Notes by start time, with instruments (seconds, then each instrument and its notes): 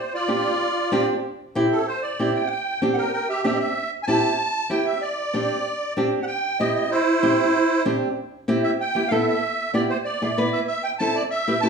Already playing: accordion C5
0.14 accordion F4 D5
0.28 nylon-string guitar C4 D4 G4
0.92 nylon-string guitar C4 D4 G4
1.55 nylon-string guitar C4 E4 G4
1.72 accordion A4
1.88 accordion C5
2.02 accordion D5
2.19 nylon-string guitar C4 E4 G4
2.35 accordion G5
2.47 accordion F#5 G5
2.82 nylon-string guitar C4 D4 G4
2.94 accordion A#4 F#5 G5
3.13 accordion A#4 G5
3.29 accordion G4 E5
3.43 nylon-string guitar C4 D4 G4, accordion G4 E5
3.55 accordion D#5
3.60 accordion E5
4.03 accordion G#5
4.07 nylon-string guitar C4 E4 G4, accordion A5
4.70 nylon-string guitar C4 E4 G4, accordion G5
4.85 accordion E5
5.01 accordion D5
5.33 nylon-string guitar C4 D4 G4
5.97 nylon-string guitar C4 D4 G4
6.22 accordion F#5
6.27 accordion G5
6.59 nylon-string guitar C4 E4 G4, accordion D#5
6.75 accordion D#5
6.90 accordion E4 C5
7.23 nylon-string guitar C4 E4 G4
7.85 nylon-string guitar C4 D4 G4
8.48 nylon-string guitar C4 E4 G4
8.63 accordion E5
8.81 accordion G5
8.95 nylon-string guitar B3 E4 G4
9.08 nylon-string guitar B3 E4 A4, accordion E5 F5
9.28 accordion E5
9.74 nylon-string guitar B3 E4 G4, accordion D5
9.90 accordion C5
10.05 accordion D5
10.22 nylon-string guitar B3 E4 G#4
10.37 nylon-string guitar B3 E4 B4
10.53 accordion E5
10.67 accordion E5
10.83 accordion G5
10.99 nylon-string guitar C4 E4 A4, accordion A5
11.15 accordion D5
11.30 accordion E5
11.48 nylon-string guitar E4 G4 B4
11.61 nylon-string guitar E4 G4 B4, accordion A5